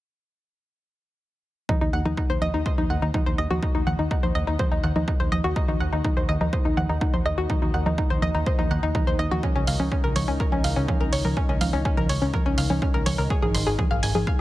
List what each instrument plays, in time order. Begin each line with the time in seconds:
1.69 synth drone D#3 D#4, synth pluck D#4, kick, low conga
1.81 analog synth bass D#2, synth pluck D#4
1.93 analog synth bass D#2, synth pluck F#5
2.05 analog synth bass D#2, synth pluck D#4, low conga
2.17 synth pluck D#4, kick
2.30 analog synth bass D#2, synth pluck C5
2.42 analog synth bass D#2, synth pluck D#5, low conga
2.54 analog synth bass D#2, synth pluck D#4
2.66 synth pluck C5, kick
2.78 analog synth bass D#2, synth pluck D#4, low conga
2.90 analog synth bass D#2, synth pluck F#5
3.02 analog synth bass D#2, synth pluck D#4
3.14 synth pluck D#4, kick, low conga
3.26 analog synth bass D#2, synth pluck C5
3.38 analog synth bass D#2, synth pluck D#5
3.50 analog synth bass D#2, synth pluck F#4, low conga
3.62 synth pluck D#4, kick
3.75 analog synth bass D#2, synth pluck D#4
3.87 analog synth bass D#2, synth pluck F#5, low conga
3.99 analog synth bass D#2, synth pluck D#4
4.11 synth pluck D#4, kick
4.23 analog synth bass D#2, synth pluck C5, low conga
4.35 analog synth bass D#2, synth pluck D#5
4.47 analog synth bass D#2, synth pluck D#4
4.59 synth pluck C5, kick, low conga
4.72 analog synth bass D#2, synth pluck D#4
4.84 analog synth bass D#2, synth pluck F#5
4.96 analog synth bass D#2, synth pluck D#4, low conga
5.08 synth pluck D#4, kick
5.20 analog synth bass D#2, synth pluck C5
5.32 analog synth bass D#2, synth pluck D#5, low conga
5.44 analog synth bass D#2, synth pluck F#4
5.56 synth pluck D#4, kick
5.68 analog synth bass D#2, synth pluck D#4, low conga
5.80 analog synth bass D#2, synth pluck F#5
5.93 analog synth bass D#2, synth pluck D#4
6.04 synth pluck D#4, kick, low conga
6.17 analog synth bass D#2, synth pluck C5
6.29 analog synth bass D#2, synth pluck D#5
6.41 analog synth bass D#2, synth pluck D#4, low conga
6.53 synth pluck C5, kick
6.65 analog synth bass D#2, synth pluck D#4
6.77 analog synth bass D#2, synth pluck F#5, low conga
6.89 analog synth bass D#2, synth pluck D#4
7.01 synth pluck D#4, kick
7.14 analog synth bass D#2, synth pluck C5, low conga
7.25 analog synth bass D#2, synth pluck D#5
7.38 analog synth bass D#2, synth pluck F#4
7.50 synth pluck D#4, kick, low conga
7.62 analog synth bass D#2, synth pluck D#4
7.74 analog synth bass D#2, synth pluck F#5
7.86 analog synth bass D#2, synth pluck D#4, low conga
7.98 synth pluck D#4, kick
8.10 analog synth bass D#2, synth pluck C5
8.22 analog synth bass D#2, synth pluck D#5, low conga
8.35 analog synth bass D#2, synth pluck D#4
8.46 synth pluck C5, kick
8.59 analog synth bass D#2, synth pluck D#4, low conga
8.71 analog synth bass D#2, synth pluck F#5
8.83 analog synth bass D#2, synth pluck D#4
8.95 synth pluck D#4, kick, low conga
9.07 analog synth bass D#2, synth pluck C5
9.19 analog synth bass D#2, synth pluck D#5
9.31 analog synth bass D#2, synth pluck F#4, low conga
9.43 synth pluck C#4, kick, low conga
9.55 analog synth bass C#2, synth pluck C#4
9.67 analog synth bass C#2, synth pluck F5, open hi-hat
9.80 analog synth bass C#2, synth pluck C#4, low conga
9.92 synth pluck C#4, kick
10.04 analog synth bass C#2, synth pluck A#4
10.16 analog synth bass C#2, synth pluck C#5, open hi-hat, low conga
10.28 analog synth bass C#2, synth pluck C#4
10.40 synth pluck A#4, kick
10.52 analog synth bass C#2, synth pluck C#4, low conga
10.64 analog synth bass C#2, synth pluck F5, open hi-hat
10.76 analog synth bass C#2, synth pluck C#4
10.88 synth pluck C#4, kick, low conga
11.01 analog synth bass C#2, synth pluck A#4
11.13 analog synth bass C#2, synth pluck C#5, open hi-hat
11.25 analog synth bass C#2, synth pluck A#4, low conga
11.37 synth pluck C#4, kick
11.49 analog synth bass C#2, synth pluck C#4
11.61 analog synth bass C#2, synth pluck F5, open hi-hat, low conga
11.73 analog synth bass C#2, synth pluck C#4
11.85 synth pluck C#4, kick
11.97 analog synth bass C#2, synth pluck A#4, low conga
12.09 analog synth bass C#2, synth pluck C#5, open hi-hat
12.22 analog synth bass C#2, synth pluck C#4
12.34 synth pluck A#4, kick, low conga
12.46 analog synth bass C#2, synth pluck C#4
12.58 analog synth bass C#2, synth pluck F5, open hi-hat
12.70 analog synth bass C#2, synth pluck C#4, low conga
12.82 synth pluck C#4, kick
12.94 analog synth bass C#2, synth pluck A#4
13.06 analog synth bass C#2, synth pluck C#5, open hi-hat, low conga
13.18 analog synth bass C#2, synth pluck A#4
13.30 synth pluck G#4, kick
13.42 analog synth bass G#1, synth pluck G#4, low conga
13.54 analog synth bass G#1, synth pluck C6, open hi-hat
13.67 analog synth bass G#1, synth pluck G#4
13.79 synth pluck G#4, kick, low conga
13.91 analog synth bass G#1, synth pluck F5
14.03 analog synth bass G#1, synth pluck G#5, open hi-hat
14.15 analog synth bass G#1, synth pluck G#4, low conga
14.27 synth pluck F5, kick